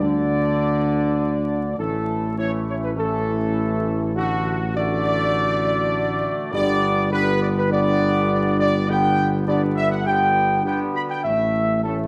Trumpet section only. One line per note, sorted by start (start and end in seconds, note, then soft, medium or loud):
0.00 1.75 D5 loud
1.79 2.34 A4 medium
2.38 2.51 C#5 loud
2.68 2.75 C#5 medium
2.83 2.90 B4 medium
2.98 4.11 A4 loud
4.16 4.72 F#4 loud
4.75 6.48 D5 loud
6.53 7.08 D5 loud
7.12 7.39 B4 loud
7.41 7.48 D5 medium
7.56 7.70 B4 medium
7.71 8.56 D5 loud
8.59 8.87 D5 loud
8.89 9.30 G5 loud
9.47 9.60 D5 loud
9.76 9.90 E5 loud
9.91 10.05 F#5 medium
10.05 10.61 G5 loud
10.66 10.79 G5 loud
10.95 11.02 B5 loud
11.10 11.23 G5 medium
11.23 11.79 E5 loud
11.83 11.97 A4 medium